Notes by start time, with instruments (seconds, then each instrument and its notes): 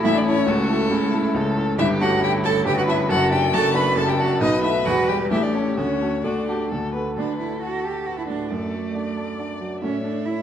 Already playing: grand piano A1 A2 A3 E4 A4, violin E4
0.03 grand piano A1 A2, cello E4, violin E5
0.15 cello D4, violin D5
0.26 grand piano A3 E4 A4, cello C#4, violin C#5
0.47 grand piano C#2 C#3, cello A3, violin F#4 A4
0.69 grand piano A3 E4 A4
0.91 grand piano C#2 C#3, violin E4
1.13 grand piano A3 E4 A4
1.34 grand piano C#2 C#3, violin A4
1.56 grand piano A3 E4 A4
1.78 grand piano G1 G2, cello E4, violin G4 E5
2.00 grand piano A3 C#4 A4, cello F#4, violin F#5
2.22 grand piano G1 G2, violin E4 G5, cello G4
2.44 grand piano A3 C#4 A4, cello A4, violin A5
2.65 grand piano G1 G2, cello G4, violin B4 G5
2.77 cello F#4, violin F#5
2.87 grand piano A3 C#4 A4, cello E4, violin E5
3.09 grand piano F#1 F#2, cello F#4, violin A4 F#5
3.30 grand piano A3 D4 A4, cello G4, violin G5
3.53 grand piano F#1 F#2, violin F#4 A5, cello A4
3.74 grand piano A3 D4 A4, cello B4, violin B5
3.95 grand piano F#1 F#2, violin A4 A5, cello A4
4.08 cello G4, violin G5
4.18 grand piano A3 D4 A4, cello F#4, violin F#5
4.40 grand piano B1 B2, cello D#4, violin B4 D#5
4.62 grand piano A3 F#4 B4, cello E4, violin E5
4.85 grand piano E1 E2, cello F#4, violin F#5
5.08 grand piano G3 G4 B4, cello G4, violin G5
5.31 grand piano A1 A2, cello E4, violin G4 E5
5.42 cello D4, violin D5
5.53 grand piano A3 G4 A4, cello C#4, violin C#5
5.77 grand piano D2 D3, cello C#4, violin F#4 C#5
6.01 grand piano A3 F#4 A4
6.24 grand piano D2 D3, cello D4, violin F#4 D5
6.48 grand piano A3 F#4 A4, violin G4
6.71 grand piano D2 D3, violin A4
6.94 grand piano A3 F#4 A4, violin B4
7.17 grand piano D2, cello D4, violin A4 B4
7.40 grand piano A3, cello E4
7.62 cello F#4, grand piano F#4, violin A4
7.84 cello G4, grand piano A4
8.06 cello F#4, grand piano F#4, violin B4
8.19 cello E4
8.28 grand piano A2, cello D4
8.50 grand piano F#2, cello A3, violin A4 D5
8.73 grand piano A3
8.95 grand piano D4, violin D5
9.17 grand piano A4
9.39 grand piano D4
9.60 grand piano F#3
9.82 grand piano A2, cello C#4, violin C#5 E5
10.04 grand piano A3, cello D4
10.26 cello E4, grand piano E4, violin C#5